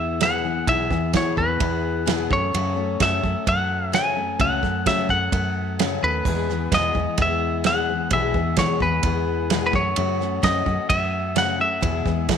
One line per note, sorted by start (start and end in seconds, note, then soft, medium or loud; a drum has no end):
0.00 0.63 E2 medium
0.00 0.21 E3 medium
0.00 0.21 B3 medium
0.00 0.21 E4 medium
0.00 0.21 G#4 medium
0.00 0.22 E5 medium
0.21 0.44 E2 medium
0.21 0.44 B2 medium
0.21 0.45 E3 medium
0.21 0.44 B3 medium
0.21 0.44 E4 medium
0.21 0.43 G#4 medium
0.21 0.68 F#5 medium
0.21 snare loud
0.21 ride bell medium
0.44 0.68 E3 soft
0.44 0.67 B3 soft
0.44 0.68 E4 medium
0.44 0.68 G#4 medium
0.67 0.89 B1 medium
0.67 0.91 E2 medium
0.67 0.91 B2 medium
0.67 0.91 E3 medium
0.67 0.91 B3 medium
0.67 0.91 E4 medium
0.67 0.89 G#4 medium
0.67 1.12 E5 loud
0.67 kick loud
0.67 ride bell medium
0.91 1.12 E2 medium
0.91 1.12 E3 soft
0.91 1.13 B3 soft
0.91 1.13 E4 soft
0.91 1.14 G#4 medium
0.91 kick medium
0.91 snare soft
1.13 1.37 E2 medium
1.13 1.37 B2 medium
1.13 1.37 E3 medium
1.13 1.35 E3 medium
1.13 1.37 B3 medium
1.13 1.37 E4 medium
1.13 1.37 G#4 medium
1.13 1.37 C#5 medium
1.13 kick medium
1.13 snare loud
1.13 ride bell medium
1.37 1.59 E2 medium
1.37 1.59 E3 soft
1.37 1.60 B3 medium
1.37 1.60 E4 medium
1.37 1.61 G#4 medium
1.37 2.27 B4 medium
1.37 kick medium
1.60 2.26 E2 loud
1.60 2.05 E3 medium
1.60 2.05 B3 medium
1.60 2.06 E4 medium
1.60 2.06 G#4 medium
1.60 kick loud
1.60 ride bell medium
2.06 2.30 E2 medium
2.06 2.30 B2 medium
2.06 2.30 E3 medium
2.06 2.30 B3 medium
2.06 2.30 E4 medium
2.06 2.30 G#4 loud
2.06 snare loud
2.06 ride bell medium
2.31 2.52 F#2 medium
2.31 2.53 F#3 soft
2.31 2.53 A3 soft
2.31 2.53 C#4 soft
2.31 2.53 A4 medium
2.31 3.03 C#5 loud
2.31 kick loud
2.53 2.77 F#2 medium
2.53 2.97 F#2 medium
2.53 2.77 C#3 medium
2.53 2.76 F#3 medium
2.53 2.76 A3 medium
2.53 2.75 C#4 medium
2.53 2.74 A4 medium
2.53 ride bell medium
2.75 2.99 F#3 soft
2.75 2.99 A3 medium
2.75 3.00 C#4 medium
2.75 2.99 A4 medium
3.00 3.23 F#2 medium
3.00 3.21 F#2 loud
3.00 3.23 C#3 medium
3.00 3.23 F#3 medium
3.00 3.23 A3 medium
3.00 3.22 C#4 medium
3.00 3.21 A4 medium
3.00 3.48 E5 medium
3.00 kick medium
3.00 snare loud
3.00 ride bell medium
3.23 3.34 F#2 medium
3.23 3.45 F#3 soft
3.23 3.45 A3 soft
3.23 3.47 C#4 medium
3.23 3.46 A4 medium
3.23 kick medium
3.46 4.36 F#2 medium
3.46 3.92 F#3 medium
3.46 3.93 A3 medium
3.46 3.92 C#4 medium
3.46 3.93 A4 medium
3.46 3.94 F#5 loud
3.46 kick loud
3.46 ride bell medium
3.92 4.16 F#2 medium
3.92 4.17 C#3 medium
3.92 4.16 F#3 medium
3.92 4.16 A3 medium
3.92 4.15 C#4 medium
3.92 4.14 A4 medium
3.92 4.41 G#5 loud
3.92 snare loud
3.92 ride bell medium
4.16 4.39 F#3 soft
4.16 4.39 A3 soft
4.16 4.39 C#4 soft
4.16 4.39 A4 medium
4.39 4.61 C#2 medium
4.39 4.63 F#2 medium
4.39 4.63 C#3 medium
4.39 4.63 F#3 medium
4.39 4.62 A3 medium
4.39 4.62 C#4 medium
4.39 4.61 A4 medium
4.39 4.87 F#5 loud
4.39 kick loud
4.39 ride bell medium
4.62 4.84 F#2 medium
4.62 4.85 F#3 soft
4.62 4.85 A3 soft
4.62 4.86 C#4 medium
4.62 4.86 A4 medium
4.62 kick medium
4.62 snare soft
4.86 5.09 F#2 medium
4.86 5.09 C#3 medium
4.86 5.07 F#3 loud
4.86 5.10 F#3 medium
4.86 5.10 A3 medium
4.86 5.09 C#4 medium
4.86 5.08 A4 medium
4.86 5.10 E5 loud
4.86 kick medium
4.86 snare loud
4.86 ride bell medium
5.09 5.31 F#2 medium
5.09 5.31 F#3 soft
5.09 5.31 A3 soft
5.09 5.33 C#4 soft
5.09 5.33 A4 medium
5.09 6.06 F#5 loud
5.09 kick medium
5.32 5.98 F#2 loud
5.32 5.79 F#3 medium
5.32 5.79 A3 medium
5.32 5.79 C#4 medium
5.32 5.79 A4 medium
5.32 kick loud
5.32 ride bell medium
5.79 6.02 F#2 medium
5.79 6.03 C#3 medium
5.79 6.03 F#3 medium
5.79 6.03 A3 medium
5.79 6.03 C#4 loud
5.79 6.01 A4 medium
5.79 snare loud
5.79 ride bell medium
6.03 6.24 D#2 medium
6.03 6.26 F#3 soft
6.03 6.27 A3 soft
6.03 6.26 C#4 soft
6.03 6.26 A4 medium
6.03 6.75 B4 medium
6.25 6.68 E2 medium
6.25 6.49 E2 medium
6.25 6.50 B2 medium
6.25 6.50 E3 medium
6.25 6.49 G#3 medium
6.25 6.48 B3 medium
6.25 6.48 G#4 medium
6.25 kick loud
6.25 crash medium
6.49 6.72 E3 soft
6.49 6.72 G#3 soft
6.49 6.72 B3 medium
6.49 6.72 G#4 medium
6.49 snare soft
6.72 6.93 E2 medium
6.72 6.96 E2 medium
6.72 6.96 B2 medium
6.72 6.96 E3 medium
6.72 6.96 G#3 medium
6.72 6.95 B3 medium
6.72 6.93 G#4 medium
6.72 7.21 D#5 medium
6.72 kick medium
6.72 snare loud
6.72 ride bell medium
6.95 7.06 E2 medium
6.95 7.17 E3 soft
6.95 7.18 G#3 soft
6.95 7.19 B3 soft
6.95 7.18 G#4 medium
6.95 kick medium
7.18 8.07 E2 medium
7.18 7.65 E3 medium
7.18 7.65 G#3 medium
7.18 7.65 B3 medium
7.18 7.65 G#4 medium
7.18 kick loud
7.18 ride bell medium
7.22 7.66 E5 medium
7.64 7.88 E2 medium
7.64 7.88 B2 medium
7.64 7.89 E3 medium
7.64 7.88 G#3 medium
7.64 7.88 B3 medium
7.64 7.87 G#4 medium
7.64 8.13 F#5 loud
7.64 snare loud
7.64 ride bell medium
7.89 8.12 E3 soft
7.89 8.12 G#3 soft
7.89 8.12 B3 soft
7.89 8.12 G#4 medium
8.11 8.32 B1 medium
8.11 8.35 E2 medium
8.11 8.35 B2 medium
8.11 8.35 E3 medium
8.11 8.35 G#3 medium
8.11 8.34 B3 medium
8.11 8.34 G#4 medium
8.11 8.56 E5 loud
8.11 kick loud
8.11 ride bell medium
8.34 8.56 E2 medium
8.34 8.56 E3 soft
8.34 8.57 G#3 soft
8.34 8.57 B3 medium
8.34 8.57 G#4 medium
8.34 kick medium
8.57 8.81 E2 medium
8.57 8.81 B2 medium
8.57 8.79 E3 loud
8.57 8.81 E3 medium
8.57 8.81 G#3 medium
8.57 8.80 B3 medium
8.57 8.81 G#4 medium
8.57 8.80 C#5 medium
8.57 kick medium
8.57 snare loud
8.57 ride bell medium
8.80 9.02 E2 medium
8.80 9.03 E3 soft
8.80 9.04 G#3 soft
8.80 9.04 B3 medium
8.80 9.05 G#4 medium
8.80 9.65 B4 medium
8.80 kick medium
9.03 9.70 E2 loud
9.03 9.50 E3 medium
9.03 9.50 G#3 medium
9.03 9.50 B3 medium
9.03 9.51 G#4 medium
9.03 kick loud
9.03 ride bell medium
9.50 9.74 E2 medium
9.50 9.74 B2 medium
9.50 9.74 E3 medium
9.50 9.74 G#3 medium
9.50 9.74 B3 medium
9.50 9.74 G#4 loud
9.50 snare loud
9.50 ride bell medium
9.66 9.74 B4 medium
9.73 9.95 F#2 medium
9.73 9.97 F#3 soft
9.73 9.97 A3 soft
9.73 9.97 C#4 soft
9.73 9.97 F#4 medium
9.73 10.46 C#5 medium
9.73 kick loud
9.96 10.20 F#2 medium
9.96 10.40 F#2 medium
9.96 10.20 C#3 medium
9.96 10.21 F#3 medium
9.96 10.20 A3 medium
9.96 10.19 C#4 medium
9.96 10.18 F#4 medium
9.96 ride bell medium
10.19 10.41 F#3 soft
10.19 10.42 A3 soft
10.19 10.42 C#4 medium
10.19 10.42 F#4 medium
10.19 snare soft
10.42 10.66 F#2 medium
10.42 10.64 F#2 loud
10.42 10.66 C#3 medium
10.42 10.66 F#3 medium
10.42 10.67 A3 medium
10.42 10.66 C#4 medium
10.42 10.65 F#4 medium
10.42 10.89 D#5 medium
10.42 kick medium
10.42 snare loud
10.42 ride bell medium
10.66 10.77 F#2 medium
10.66 10.88 F#3 soft
10.66 10.89 A3 medium
10.66 10.90 C#4 medium
10.66 10.90 F#4 medium
10.66 kick medium
10.89 11.79 F#2 loud
10.89 11.35 F#3 medium
10.89 11.35 A3 medium
10.89 11.35 C#4 medium
10.89 11.35 F#4 medium
10.89 11.38 E5 medium
10.89 kick loud
10.89 ride bell medium
11.35 11.59 F#2 medium
11.35 11.59 C#3 medium
11.35 11.59 F#3 medium
11.35 11.58 A3 medium
11.35 11.58 C#4 medium
11.35 11.57 F#4 medium
11.35 11.61 F#5 medium
11.35 snare loud
11.35 ride bell medium
11.58 11.81 F#3 soft
11.58 11.82 A3 soft
11.58 11.82 C#4 soft
11.58 11.82 F#4 medium
11.58 12.38 E5 medium
11.81 12.05 E2 medium
11.81 12.04 E2 medium
11.81 12.05 B2 medium
11.81 12.05 E3 medium
11.81 12.06 G#3 medium
11.81 12.05 B3 medium
11.81 12.04 G#4 medium
11.81 kick loud
11.81 ride bell medium
12.05 12.27 E2 medium
12.05 12.29 E3 soft
12.05 12.29 G#3 soft
12.05 12.29 B3 medium
12.05 12.29 G#4 medium
12.05 kick medium
12.05 snare soft
12.29 12.38 E2 medium
12.29 12.38 B2 medium
12.29 12.38 E3 medium
12.29 12.38 G#3 medium
12.29 12.38 B3 medium
12.29 12.38 G#4 medium
12.29 kick medium
12.29 snare loud
12.29 ride bell medium